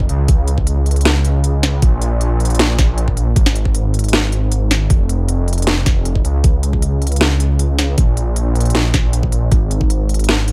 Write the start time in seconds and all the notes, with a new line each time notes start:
0.00 kick
0.09 C#2, closed hi-hat
0.28 kick, closed hi-hat
0.48 closed hi-hat
0.58 kick
0.67 closed hi-hat
0.86 closed hi-hat
0.91 closed hi-hat
0.96 closed hi-hat
1.01 closed hi-hat
1.05 snare, closed hi-hat
1.25 closed hi-hat
1.44 closed hi-hat
1.63 snare, closed hi-hat
1.82 A#1, kick, closed hi-hat
2.02 closed hi-hat
2.21 closed hi-hat
2.40 closed hi-hat
2.45 closed hi-hat
2.50 closed hi-hat
2.55 closed hi-hat
2.59 snare, closed hi-hat
2.79 kick, snare, closed hi-hat
2.98 closed hi-hat
3.08 kick
3.17 closed hi-hat
3.36 G#1, kick, closed hi-hat
3.46 snare
3.55 closed hi-hat
3.65 kick
3.75 closed hi-hat
3.94 closed hi-hat
3.99 closed hi-hat
4.04 closed hi-hat
4.08 closed hi-hat
4.13 snare, closed hi-hat
4.32 closed hi-hat
4.52 closed hi-hat
4.71 snare, closed hi-hat
4.90 F1, kick, closed hi-hat
5.09 closed hi-hat
5.29 closed hi-hat
5.48 closed hi-hat
5.53 closed hi-hat
5.58 closed hi-hat
5.62 closed hi-hat
5.67 snare, closed hi-hat
5.86 kick, snare, closed hi-hat
6.05 closed hi-hat
6.16 kick
6.25 C#2, closed hi-hat
6.44 kick, closed hi-hat
6.63 closed hi-hat
6.73 kick
6.82 closed hi-hat
7.02 closed hi-hat
7.07 closed hi-hat
7.12 closed hi-hat
7.16 closed hi-hat
7.21 snare, closed hi-hat
7.40 closed hi-hat
7.59 closed hi-hat
7.79 snare, closed hi-hat
7.98 A#1, kick, closed hi-hat
8.17 closed hi-hat
8.36 closed hi-hat
8.55 closed hi-hat
8.60 closed hi-hat
8.65 closed hi-hat
8.70 closed hi-hat
8.75 snare, closed hi-hat
8.94 kick, snare, closed hi-hat
9.13 closed hi-hat
9.23 kick
9.32 closed hi-hat
9.52 G#1, kick, closed hi-hat
9.71 closed hi-hat
9.81 kick
9.90 closed hi-hat
10.09 closed hi-hat
10.14 closed hi-hat
10.19 closed hi-hat
10.24 closed hi-hat
10.29 snare, closed hi-hat
10.48 closed hi-hat